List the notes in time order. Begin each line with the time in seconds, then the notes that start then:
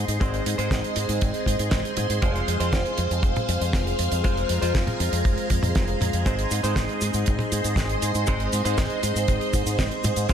Already playing: G#3 C4 D#4 G#4 C5 D#5 C6
0.08 G#2, closed hi-hat
0.20 G#1 G#3 C4 D#4 C5, kick, closed hi-hat
0.34 closed hi-hat
0.46 G#2, closed hi-hat
0.58 G#2 G#3 C4 D#4 C5, closed hi-hat
0.71 G#1, kick, snare, closed hi-hat
0.84 closed hi-hat
0.96 G#2, closed hi-hat
1.09 G#2, closed hi-hat
1.21 G#1, kick, closed hi-hat
1.34 closed hi-hat
1.46 G#2, kick, closed hi-hat
1.59 G#2, closed hi-hat
1.71 G#1, kick, snare, closed hi-hat
1.85 closed hi-hat
1.97 G#2, closed hi-hat, high tom
2.10 G#2, closed hi-hat
2.22 F1 G#3 C4 F4 C5 F5, kick, closed hi-hat
2.36 closed hi-hat
2.48 F2, closed hi-hat
2.60 F2 G#3 C4 F4 C5, closed hi-hat
2.73 F1, kick, snare, closed hi-hat
2.86 closed hi-hat
2.98 F2, closed hi-hat
3.11 F2, closed hi-hat
3.23 F1, kick, closed hi-hat
3.36 closed hi-hat, high tom
3.49 F2, closed hi-hat
3.61 F2, closed hi-hat
3.73 F1, kick, snare, closed hi-hat
3.87 closed hi-hat
3.99 F2, closed hi-hat
4.12 F2, closed hi-hat
4.24 F1 G#3 C4 F4 C5 A#5, kick, closed hi-hat
4.37 closed hi-hat
4.49 F2, closed hi-hat
4.62 F2 G#3 C4 F4 C5, closed hi-hat
4.75 F1, kick, snare, closed hi-hat
4.87 closed hi-hat, high tom
5.00 F2, closed hi-hat
5.12 F2, closed hi-hat
5.25 F1, kick, closed hi-hat
5.37 closed hi-hat
5.50 F2, kick, closed hi-hat
5.63 F2, closed hi-hat, high tom
5.75 F1, kick, snare, closed hi-hat
5.88 closed hi-hat
6.01 F2, closed hi-hat, high tom
6.13 F2, closed hi-hat
6.25 G#1 G#3 C4 D#4 C5 D#5 C6, kick, closed hi-hat, cabasa
6.39 closed hi-hat
6.51 G#2, closed hi-hat, cabasa
6.64 G#2 G#3 C4 D#4 C5, closed hi-hat, cabasa
6.76 G#1, kick, snare, closed hi-hat, cabasa
6.89 closed hi-hat
7.01 G#2, closed hi-hat, cabasa
7.13 G#2, closed hi-hat, cabasa
7.26 G#1, kick, closed hi-hat, cabasa
7.39 closed hi-hat, high tom
7.52 G#2, closed hi-hat, cabasa
7.64 G#2, closed hi-hat, cabasa
7.76 G#1, kick, snare, closed hi-hat, cabasa
7.89 closed hi-hat
8.02 G#2, closed hi-hat, cabasa
8.15 G#2, closed hi-hat, cabasa
8.27 G#1 G#3 C4 D#4 C5, kick, closed hi-hat, cabasa
8.40 closed hi-hat
8.53 G#2, closed hi-hat, cabasa
8.65 G#2 G#3 C4 D#4 C5, closed hi-hat, cabasa
8.78 G#1, kick, snare, closed hi-hat, cabasa
8.90 closed hi-hat
9.03 G#2, closed hi-hat, cabasa
9.16 G#2, closed hi-hat, cabasa
9.28 G#1, kick, closed hi-hat, cabasa
9.41 closed hi-hat
9.53 G#2, kick, closed hi-hat, cabasa
9.66 G#2, closed hi-hat, cabasa
9.79 G#1, kick, snare, closed hi-hat, cabasa
9.91 closed hi-hat
10.04 G#2, closed hi-hat, high tom, cabasa
10.16 G#2, closed hi-hat, cabasa
10.29 F1 G#3 C4 F4 G#4 C5 F5, kick, closed hi-hat, cabasa